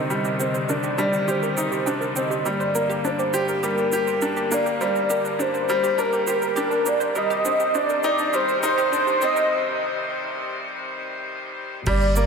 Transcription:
0.00 2.41 C3 medium
0.00 7.11 D3 medium
0.00 2.41 D#3 medium
0.00 7.11 G3 medium
0.00 0.40 C4 medium
0.00 0.70 D4 medium
0.00 1.58 D#4 loud
0.00 1.28 G4 medium
0.00 0.10 D#5 medium
0.10 0.38 G3 medium
0.10 0.21 G4 loud
0.10 0.73 D#5 medium
0.10 shaker soft
0.25 0.32 D4 medium
0.25 shaker soft
0.40 0.57 C4 medium
0.40 0.44 G4 medium
0.40 shaker medium
0.54 0.62 C5 medium
0.54 shaker soft
0.69 0.97 D4 medium
0.69 0.76 A#4 medium
0.69 1.32 D5 loud
0.69 shaker soft
0.83 0.95 G4 medium
0.83 shaker soft
0.98 1.26 G3 medium
0.98 1.06 D4 medium
0.98 shaker medium
1.13 1.18 G4 medium
1.13 shaker soft
1.28 1.56 G4 medium
1.28 1.35 C5 medium
1.28 2.19 C5 loud
1.28 shaker soft
1.42 1.50 A#4 medium
1.42 shaker soft
1.57 1.85 D#4 medium
1.57 1.61 D5 medium
1.57 shaker medium
1.72 1.76 G4 medium
1.72 shaker soft
1.86 2.15 D4 medium
1.86 1.97 G5 medium
1.86 shaker soft
2.01 2.08 A#4 medium
2.01 shaker soft
2.16 2.44 C4 medium
2.16 2.49 D#5 medium
2.16 2.20 G5 medium
2.16 shaker medium
2.30 2.38 G4 medium
2.30 shaker soft
2.46 7.12 G2 medium
2.46 2.74 G3 medium
2.46 7.12 A#3 medium
2.46 2.50 G4 medium
2.46 3.07 D5 medium
2.46 shaker soft
2.60 2.67 C5 medium
2.60 shaker soft
2.75 3.03 A#3 medium
2.75 2.82 A#4 medium
2.75 shaker medium
2.90 3.01 G4 loud
2.90 shaker soft
3.04 3.12 D4 medium
3.04 3.32 D4 medium
3.04 3.12 C5 loud
3.04 shaker soft
3.10 3.20 D5 medium
3.19 3.24 G4 medium
3.19 3.65 C5 loud
3.19 shaker soft
3.34 3.50 G4 loud
3.34 3.41 C5 medium
3.34 shaker medium
3.48 3.56 A#4 medium
3.48 shaker soft
3.63 3.91 G3 medium
3.63 3.74 G4 loud
3.63 4.55 A#4 medium
3.63 shaker soft
3.78 3.86 D4 medium
3.78 shaker soft
3.92 3.97 G4 medium
3.92 4.21 G4 medium
3.92 shaker medium
4.07 4.15 C5 medium
4.07 shaker soft
4.22 4.50 D4 medium
4.22 4.29 A#4 medium
4.22 shaker soft
4.37 4.48 G4 medium
4.37 shaker soft
4.51 4.79 A#3 medium
4.51 4.59 D4 medium
4.51 4.82 D5 loud
4.51 shaker medium
4.66 4.70 G4 medium
4.66 shaker soft
4.81 5.09 G3 medium
4.81 4.88 C5 medium
4.81 5.43 D5 loud
4.81 shaker soft
4.96 5.03 A#4 medium
4.96 shaker soft
5.10 5.27 A#3 medium
5.10 5.21 G4 loud
5.10 shaker medium
5.25 5.32 D4 medium
5.25 shaker soft
5.39 5.67 D4 medium
5.39 5.44 G4 medium
5.39 6.02 C5 loud
5.39 shaker soft
5.54 5.61 C5 medium
5.54 shaker soft
5.69 5.97 G3 loud
5.69 5.76 A#4 medium
5.69 shaker medium
5.84 5.95 G4 medium
5.84 shaker soft
5.98 6.05 D4 medium
5.98 6.26 A#4 medium
5.98 6.89 A#4 loud
5.98 shaker soft
6.13 6.17 G4 medium
6.13 shaker soft
6.27 6.56 G4 medium
6.27 6.35 C5 medium
6.27 shaker medium
6.42 6.50 A#4 medium
6.42 shaker soft
6.56 6.85 D4 medium
6.56 6.68 G4 loud
6.56 shaker soft
6.71 6.79 D4 medium
6.71 shaker soft
6.86 7.15 A#3 medium
6.86 6.91 G4 medium
6.86 7.17 D5 loud
6.86 shaker medium
7.00 7.08 C5 medium
7.00 shaker soft
7.15 11.83 C3 medium
7.15 11.83 D#3 medium
7.15 11.83 G3 medium
7.15 7.44 G3 medium
7.15 7.23 A#4 medium
7.15 11.82 C5 medium
7.15 7.78 D#5 loud
7.15 shaker soft
7.30 7.42 G4 loud
7.30 shaker soft
7.45 7.73 C4 medium
7.45 7.53 D4 medium
7.45 shaker medium
7.60 7.64 G4 medium
7.60 shaker soft
7.75 8.03 D4 medium
7.75 7.82 C5 medium
7.75 8.37 D5 loud
7.75 shaker soft
7.89 7.97 A#4 medium
7.89 shaker soft
8.03 8.21 D#4 loud
8.03 8.15 G4 loud
8.03 shaker medium
8.19 8.27 D4 medium
8.19 shaker soft
8.33 8.61 G3 medium
8.33 8.38 G4 medium
8.33 9.25 C5 loud
8.33 shaker soft
8.48 8.56 C5 medium
8.48 shaker soft
8.63 8.91 D#4 loud
8.63 8.70 A#4 medium
8.63 shaker medium
8.78 8.89 G4 loud
8.78 shaker soft
8.92 9.20 D4 medium
8.92 9.00 D4 medium
8.92 shaker soft
9.07 9.11 G4 medium
9.07 shaker soft
9.22 9.50 C4 loud
9.22 9.29 C5 medium
9.22 9.52 D#5 loud
9.22 shaker medium
9.36 9.44 A#4 medium
9.36 shaker soft
11.86 12.26 G1 medium
11.86 12.26 D3 medium
11.86 12.26 G3 medium
11.86 12.04 G3 loud
11.86 12.26 A#3 medium
11.86 11.94 G4 medium
11.86 12.26 D5 loud
11.86 kick loud
11.86 crash medium
11.86 shaker soft
12.01 shaker soft
12.16 12.26 A#3 medium
12.16 12.23 D5 medium
12.16 shaker medium

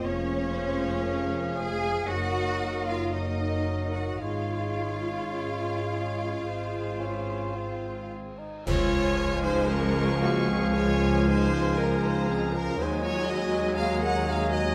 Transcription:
0.00 1.07 A#3 medium
0.00 2.04 F4 medium
0.04 2.03 F1 medium
0.04 2.08 F3 medium
0.04 1.56 C#4 medium
0.04 2.03 G#4 medium
0.04 0.55 C#5 medium
0.04 1.56 C#5 medium
0.04 1.31 C#5 medium
0.04 2.08 F5 medium
0.54 1.05 C5 medium
1.04 2.07 G#3 medium
1.04 1.54 A#4 medium
1.55 2.06 G#4 medium
1.55 2.06 G#4 loud
1.55 2.07 G#5 medium
2.04 4.17 F#1 medium
2.04 3.12 F#3 medium
2.04 4.02 A#3 medium
2.04 5.32 D#4 medium
2.04 2.86 F#4 loud
2.04 3.11 A#4 medium
2.04 3.10 A#4 medium
2.04 3.11 D#5 medium
2.04 2.86 F#5 medium
2.04 2.85 F#5 medium
2.84 3.12 F4 medium
2.84 3.12 F5 medium
2.84 3.10 F5 medium
2.84 3.12 F5 medium
3.11 4.19 F#3 medium
3.11 3.93 D#4 medium
3.11 4.18 A#4 medium
3.11 4.19 A#4 medium
3.11 3.93 D#5 medium
3.11 3.91 D#5 medium
3.11 4.19 D#5 medium
3.91 4.21 F#4 medium
3.91 4.21 F#5 medium
3.91 4.20 F#5 medium
4.19 6.44 G#1 medium
4.19 8.29 G#3 soft
4.19 5.20 G#3 medium
4.19 8.08 F4 medium
4.19 6.41 G#4 medium
4.19 8.13 G#4 medium
4.19 6.47 C#5 medium
4.19 8.12 F5 medium
5.31 7.02 G#3 medium
5.31 6.44 C#4 medium
6.44 8.42 G#1 medium
6.44 8.29 C4 soft
6.44 8.30 G#4 medium
6.44 8.34 C5 medium
7.00 7.58 C#4 medium
7.56 8.40 C4 medium
8.39 8.66 D#4 medium
8.65 12.74 C#2 medium
8.65 12.75 C#2 loud
8.65 12.74 C#3 medium
8.65 12.74 F3 medium
8.65 10.71 F3 loud
8.65 12.78 F3 medium
8.65 10.71 G#3 loud
8.65 12.75 G#3 medium
8.65 9.46 F4 loud
8.65 12.74 G#4 medium
8.65 9.45 C#5 loud
8.65 9.41 C#5 loud
8.65 12.75 F5 medium
8.65 9.66 G#5 medium
8.65 12.74 G#5 medium
8.65 concert bass drum medium
8.65 crash medium
9.44 9.72 D#4 medium
9.44 9.71 C5 medium
9.44 9.71 C5 loud
9.69 10.21 C#4 medium
9.69 10.22 A#4 medium
9.69 10.24 A#4 loud
9.69 10.75 C#6 medium
10.22 10.50 A#3 medium
10.22 10.49 F#4 medium
10.22 10.50 F#4 medium
10.49 10.77 C4 medium
10.49 10.75 G#4 medium
10.49 10.76 G#4 loud
10.74 12.74 F3 medium
10.74 12.74 G#3 medium
10.74 11.29 F4 loud
10.74 11.28 C#5 medium
10.74 11.26 C#5 loud
10.74 11.78 G#5 medium
11.26 11.79 D#4 loud
11.26 11.79 C5 medium
11.26 11.77 C5 loud
11.77 12.06 C#4 medium
11.77 12.04 A#4 medium
11.77 12.03 A#4 loud
11.77 12.78 A#5 medium
12.02 12.31 D#4 medium
12.02 12.29 C5 medium
12.28 12.52 C4 medium
12.28 12.55 G#4 medium
12.28 12.54 G#4 medium
12.53 12.79 C#4 medium
12.53 12.78 A#4 medium
12.53 12.79 A#4 loud
12.77 14.75 D#2 medium
12.77 14.75 D#3 medium
12.77 14.75 F#3 medium
12.77 14.73 G#3 medium
12.77 14.75 G#3 medium
12.77 13.04 D#4 medium
12.77 14.75 G#4 medium
12.77 13.03 C5 medium
12.77 13.04 C5 medium
12.77 14.75 D#5 medium
12.77 13.76 G#5 medium
12.77 14.75 G#5 medium
13.02 13.29 F4 medium
13.02 13.29 C#5 medium
13.02 13.27 C#5 loud
13.27 13.77 F#4 medium
13.27 13.77 D#5 medium
13.27 13.77 D#5 loud
13.76 14.04 G#4 medium
13.76 14.02 F5 loud
13.76 14.04 F5 loud
13.76 14.74 A#5 medium
14.02 14.27 A#4 medium
14.02 14.30 F#5 medium
14.02 14.27 F#5 loud
14.28 14.54 G#4 medium
14.28 14.55 F5 medium
14.28 14.52 F5 loud
14.52 14.75 F#4 medium
14.52 14.75 D#5 loud
14.52 14.75 D#5 medium

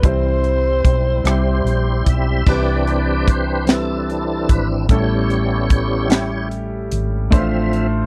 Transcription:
0.00 0.80 C2 medium
0.00 1.21 E3 medium
0.00 2.42 G3 soft
0.00 0.99 G3 medium
0.00 0.99 C4 medium
0.00 0.99 E4 medium
0.00 kick medium
0.00 closed hi-hat medium
0.04 2.45 C4 soft
0.04 1.26 E4 medium
0.04 1.00 C5 medium
0.04 2.08 C5 medium
0.44 closed hi-hat soft
0.85 1.22 B1 medium
0.85 kick medium
0.85 closed hi-hat medium
1.24 1.62 C2 medium
1.24 2.20 G3 medium
1.24 2.21 C4 medium
1.24 2.21 E4 medium
1.24 2.43 E4 medium
1.24 2.21 G4 medium
1.24 2.44 G4 medium
1.24 cross-stick medium
1.24 closed hi-hat medium
1.29 2.04 C5 medium
1.64 2.02 A#1 medium
1.64 closed hi-hat soft
2.06 2.44 B1 medium
2.06 2.49 E5 medium
2.06 kick medium
2.06 closed hi-hat medium
2.47 4.45 C2 medium
2.47 3.65 C3 medium
2.47 4.86 E3 soft
2.47 3.42 G3 medium
2.47 3.43 C4 medium
2.47 4.87 C4 soft
2.47 4.86 D4 medium
2.47 2.54 D4 soft
2.47 3.65 G4 medium
2.47 3.43 B4 medium
2.47 3.65 B4 medium
2.47 3.31 D5 medium
2.47 kick medium
2.47 crash medium
2.54 3.46 E4 medium
2.87 closed hi-hat soft
3.28 3.70 C5 medium
3.28 kick medium
3.28 closed hi-hat medium
3.67 4.63 G3 medium
3.67 4.64 C4 medium
3.67 4.64 E4 medium
3.67 4.64 B4 medium
3.67 snare medium
3.67 closed hi-hat medium
3.72 4.87 E4 medium
3.72 4.53 A4 medium
4.10 closed hi-hat soft
4.49 4.87 G#1 medium
4.49 4.68 B4 medium
4.49 kick medium
4.49 closed hi-hat medium
4.89 6.88 A1 medium
4.89 6.07 A2 medium
4.89 5.85 G3 medium
4.89 6.08 G3 soft
4.89 6.08 B3 soft
4.89 5.86 C#4 medium
4.89 6.08 C#4 medium
4.89 5.86 E4 medium
4.89 6.49 E4 medium
4.89 6.49 G4 soft
4.89 5.86 A4 medium
4.89 6.49 C#5 medium
4.89 kick medium
4.89 closed hi-hat medium
5.30 closed hi-hat soft
5.70 kick medium
5.70 closed hi-hat medium
6.08 7.06 G3 medium
6.08 7.06 C#4 medium
6.08 7.06 E4 medium
6.08 7.07 G4 medium
6.08 snare medium
6.08 closed hi-hat medium
6.51 closed hi-hat soft
6.91 7.29 G#1 medium
6.91 closed hi-hat medium
7.30 8.06 A1 medium
7.30 8.06 A2 medium
7.30 7.87 F3 soft
7.30 8.06 A3 medium
7.30 8.06 D4 medium
7.30 7.39 E4 medium
7.30 8.06 C5 medium
7.30 7.87 E5 medium
7.30 kick loud
7.30 closed hi-hat medium
7.35 7.88 C4 soft
7.35 8.06 F4 medium
7.73 closed hi-hat soft

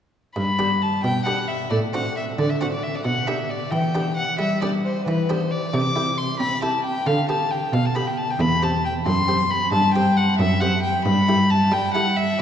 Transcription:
0.36 1.00 G2 medium
0.36 1.00 G2 soft
0.36 0.84 B5 medium
0.59 1.08 B3 soft
0.59 1.08 D4 soft
0.59 1.08 G4 soft
0.82 1.03 A5 medium
1.03 1.67 B2 medium
1.03 1.67 B2 soft
1.03 1.25 G5 medium
1.25 1.58 B3 soft
1.25 1.59 D4 soft
1.25 1.59 G4 soft
1.25 1.50 F#5 medium
1.48 1.70 E5 medium
1.70 2.34 A2 soft
1.70 2.34 A2 medium
1.70 1.78 D5 medium
1.94 2.42 C4 soft
1.94 2.42 D4 soft
1.94 2.43 F#4 soft
1.94 2.16 F#5 medium
2.17 2.25 E5 medium
2.38 3.01 D3 medium
2.38 3.01 D3 soft
2.38 2.51 D5 medium
2.50 2.61 E5 medium
2.61 2.93 C4 soft
2.61 2.93 D4 soft
2.61 2.94 F#4 soft
2.61 2.66 F#5 medium
2.73 2.85 D5 medium
2.83 2.97 E5 medium
2.95 3.04 D5 medium
3.05 3.68 B2 soft
3.05 3.68 B2 medium
3.05 3.29 F#5 medium
3.27 3.76 B3 soft
3.27 3.76 D4 soft
3.27 3.76 G4 soft
3.27 3.52 E5 medium
3.50 3.73 D5 medium
3.71 4.35 E3 medium
3.71 4.35 E3 soft
3.71 4.16 G5 medium
3.95 4.27 B3 soft
3.95 4.27 D4 soft
3.95 4.27 G4 soft
4.17 4.38 F#5 medium
4.39 5.02 G3 soft
4.39 5.02 G3 medium
4.39 4.61 E5 medium
4.61 5.10 B3 soft
4.61 5.10 D4 soft
4.61 5.10 G4 soft
4.61 4.69 D5 medium
4.84 5.06 C5 medium
5.06 5.69 E3 medium
5.06 5.70 E3 soft
5.06 5.31 B4 medium
5.29 5.61 B3 soft
5.29 5.61 D4 soft
5.29 5.62 G4 soft
5.29 5.52 C5 medium
5.51 5.75 D5 medium
5.73 6.36 C3 medium
5.73 6.36 C3 soft
5.73 6.19 D6 medium
5.96 6.43 E4 soft
5.96 6.44 G4 soft
6.18 6.39 C6 medium
6.39 7.02 C4 medium
6.39 7.02 C4 soft
6.39 6.61 B5 medium
6.62 6.94 E4 soft
6.62 6.94 G4 soft
6.62 6.84 A5 medium
6.85 7.08 G5 medium
7.06 7.69 D3 medium
7.06 7.69 D3 soft
7.06 7.29 F5 medium
7.29 7.77 B3 soft
7.29 7.77 G4 soft
7.29 7.52 A5 medium
7.51 7.75 G5 medium
7.72 8.35 B2 medium
7.72 8.36 B2 soft
7.72 7.87 F5 medium
7.86 7.97 A5 medium
7.95 8.27 B3 soft
7.95 8.28 G4 soft
7.95 8.09 B5 medium
8.07 8.19 G5 medium
8.17 8.32 A5 medium
8.30 8.42 G5 medium
8.39 9.02 E2 medium
8.39 9.02 E2 soft
8.39 8.65 B5 medium
8.62 9.10 C4 soft
8.62 9.10 G4 soft
8.62 8.84 A5 medium
8.85 8.93 G5 medium
9.06 9.69 F#2 medium
9.06 9.69 F#2 soft
9.06 9.52 C6 medium
9.28 9.60 C4 soft
9.28 9.60 G4 soft
9.51 9.72 B5 medium
9.72 10.35 G2 medium
9.72 10.35 G2 soft
9.72 9.93 A5 medium
9.94 10.43 C4 soft
9.94 10.43 G4 soft
9.94 10.18 G5 medium
10.17 10.38 F#5 medium
10.39 11.02 F#2 medium
10.39 11.02 F#2 soft
10.39 10.62 E5 medium
10.60 10.94 C4 soft
10.60 10.94 G4 soft
10.60 10.82 F#5 medium
10.83 11.04 G5 medium
11.05 11.69 G2 medium
11.05 11.52 B5 medium
11.28 11.77 E4 soft
11.28 11.77 G4 soft
11.50 11.75 A5 medium
11.72 12.35 G3 soft
11.72 12.35 G3 medium
11.72 11.93 G5 medium
11.94 12.27 E4 soft
11.94 12.27 G4 soft
11.94 12.18 F#5 medium
12.17 12.41 E5 medium

